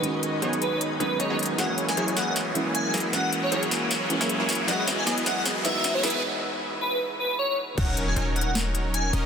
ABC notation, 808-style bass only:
X:1
M:4/4
L:1/16
Q:"Swing 16ths" 1/4=155
K:Elyd
V:1 name="808-style bass" clef=bass
z4 B,,,6 B,,,2 B,,, B,,,3 | z4 F,,,8- F,,,2 F,,, z | z4 F,,,6- F,,, F,,,2 F,,,3 | z16 |
z16 | D,,,4 D,,,8- D,,,2 D,,, z |]